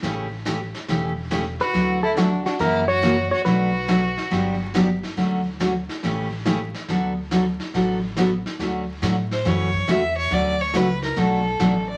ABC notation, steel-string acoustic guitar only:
X:1
M:4/4
L:1/8
Q:"Swing" 1/4=140
K:D
V:1 name="Steel-string acoustic guitar"
[C,E,A,CG] z [C,E,A,CG] z [C,E,A,CG] z [C,E,A,CG] z | [D,F,A,EF] z [D,F,A,EF] z [C,E,^A,CF] z [C,E,A,CF] z | [B,,F,A,DF] z [B,,F,A,DF] z [D,F,B,DG] z [D,F,B,DG] z | [D,F,A,CF] z [D,F,A,CF] z [C,E,A,CG] z [C,E,A,CG] z |
[D,F,B,FA] z [D,F,B,FA] z [D,F,B,FA] z [D,F,B,FA] z | [D,F,A,CF] z [D,F,A,CF] z [C,E,A,CF] z [C,E,A,CF] z | [D,F,A,CF] z [D,F,A,CF] z [B,,F,A,DF] z [B,,F,A,DF] z |]